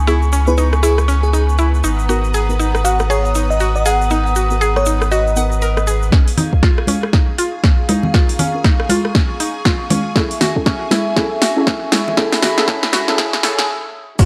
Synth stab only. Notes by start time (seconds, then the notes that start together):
0.07 B3 D#4 E4 G#4
0.47 B3 D#4 E4 G#4
2.09 B3 D#4 F#4 A#4
2.49 B3 D#4 F#4 A#4
4.10 B3 D#4 F#4 A#4
4.51 B3 D#4 F#4 A#4
5.36 B3 D#4 F#4 A#4
6.12 F4 F#4 A#4
6.52 C#4 F4 F#4 A#4
8.14 C#4 F4 F#4 A#4
8.54 C#4 F4 F#4 A#4
10.15 C#4 E4 G#4 A4
10.55 C#4 E4 G#4 A4
11.16 C#4 E4 G#4 A4
11.56 C#4 E4 G#4 A4
12.17 C#4 E4 G#4 A4
12.57 C#4 E4 G#4 A4
12.67 C#4 G#4 A4
13.08 C#4 E4 G#4 A4
13.18 C#4 E4 G#4 A4
13.43 C#4 E4 G#4 A4
14.19 A#3 C#4 F4 F#4